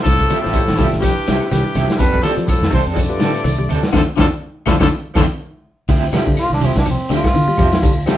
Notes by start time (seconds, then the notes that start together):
0.01 A2 F3 A4, closed hi-hat, shekere
0.05 C2 E3, kick
0.19 kick, shekere
0.29 F3 G3 C4 E4 F4 G4 C5, closed hi-hat, high conga, claves, shekere
0.40 A2 F3 A4
0.44 A1 C4 E4 G4, snare
0.53 G3 C4 F4 C5, kick, closed hi-hat, high conga, claves, shekere
0.67 A1, snare, high conga, shekere
0.75 A2 F3 G3 C4 F4 A4, open hi-hat, shekere
0.79 F3 C4 E4 G4 A4, kick, snare, high conga, low conga
0.91 A1, snare, closed hi-hat, shekere
0.99 G2 E3 F3 G4
1.03 kick, closed hi-hat, high conga, claves, shekere
1.16 muted fingered electric bass stroke, shekere
1.26 C2 C3 F3 C4 E4 G4, snare, closed hi-hat, shekere
1.40 snare, claves, shekere
1.47 G2 E3
1.51 C2 E3 G4, snare, closed hi-hat, high conga, shekere
1.64 G3, shekere
1.75 C2 F3 C4 E4 G4, closed hi-hat, high conga, low conga, claves, shekere
1.88 F3, snare, closed hi-hat, shekere
1.96 B2 G3 C4 F4 B4, shekere
2.00 F2 E3 G3 D4 A4, muted clean electric guitar stroke, kick, closed hi-hat
2.13 kick, shekere
2.21 A2 F3 G3 C4 F4 A4, closed hi-hat, high conga, shekere
2.25 G3 C4 D4 A4, claves
2.37 F3, closed hi-hat, shekere
2.44 A2 F3, kick, closed hi-hat, shekere
2.49 A4, high conga, claves
2.61 F2, snare, high conga, shekere
2.69 C3 G3 A3, kick, open hi-hat, high conga, low conga, shekere
2.73 C4 D4 A4 C5
2.87 F2 C4 D4 A4, shekere
2.93 D3 F3 A3 F4 C5 D5, kick, closed hi-hat
2.98 high conga, claves, shekere
3.08 G3 C4 F4 B4, shekere
3.20 A2 D3 G3 C4 D4 A4, snare, closed hi-hat, shekere
3.34 closed hi-hat, claves, shekere
3.44 C2 E3, closed hi-hat, high conga, shekere
3.58 G3, high conga, shekere
3.69 D2 G3 C4 D4 A4, closed hi-hat, high conga, low conga, claves, shekere
3.82 F3, snare, closed hi-hat, shekere
3.93 F2 A2 D3 F3 A3 C4 D4 F4 A4, kick, snare, high conga, claves, shekere
4.16 F2 A2 D3 F3 A3 C4 D4 F4 A4, kick, snare, high conga, claves, shekere
4.66 F2 A2 D3 F3 A3 C4 D4 F4 A4, kick, snare, high conga, claves, shekere
4.79 F2 A2 D3 F3 A3 C4 D4 F4 A4, kick, snare, high conga, claves, shekere
5.14 F2 A2 D3 F3 A3 C4 D4 F4 A4, kick, snare, high conga, claves, shekere
5.89 D2 E3 F3 C4 E4 G4, kick, snare, crash, shekere
6.03 shekere
6.12 F3 G3 C4 E4 F4 G4 A4, snare, ride bell, high conga, low conga, claves, shekere
6.26 D3 F3, kick, shekere
6.36 F4, snare, ride bell, high conga, claves, shekere
6.50 C2, snare, high conga, shekere
6.54 D4
6.61 F3 G3 E4 G4, open hi-hat, high conga, low conga, shekere
6.65 C4
6.74 C2 D4, kick, snare, ride bell, shekere
6.85 F3, ride bell, high conga, low conga, claves, shekere
6.90 C4
6.99 shekere
7.09 D2 D3 F3 G3 C4 E4 F4 G4 A4, snare, ride bell, shekere
7.15 F4
7.24 kick, snare, claves, shekere
7.34 D3 E3, ride bell, high conga, shekere
7.47 G3, high conga, shekere
7.57 F2 F3 G3 C4 E4 F4 G4, kick, ride bell, high conga, low conga, claves, shekere
7.72 F3, snare, ride bell, shekere
7.82 D2 E3 G3 C4 F4 A4, kick, ride bell, shekere
7.98 shekere
8.06 F3 G3 C4 E4 F4 G4 A4, snare, ride bell, high conga, claves, shekere